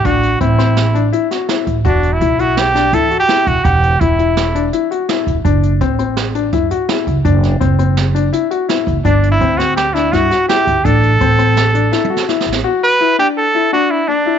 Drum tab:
HH |x--x--x--x--x--x--x--x--x--x--|x--x--x--x--x--x--x--x--x--x--|x--x--x--x--x--x--x--x--x--x--|x--x--x--x--x--x--x--x--x--x--|
SD |---------o--o--------o--o-----|------------o--o--------o-----|------------o-----------o-----|------------o-----------o-----|
T1 |------------------------------|------------------------------|------------------------------|------------------------------|
BD |o-----o--------------------o--|o-----o-----------o--------o--|o-----o--------------------o--|o-----o-----------o--------o--|

HH |x--x--x--x--x--x--x--x--x--x--|x--x--x--x--x--x--x--x--x--x--|x--x--x--x--x--x--------------|------------------------------|
SD |---o--------o-----------o-----|---------o--o--o--o--o--o-----|------------o-----o---o-o-o-o-|------------------------------|
T1 |------------------------------|------------------------------|--------------------o---------|------------------------------|
BD |o-----o--------------------o--|o-----o-----------o--------o--|o-----o-----------------------|------------------------------|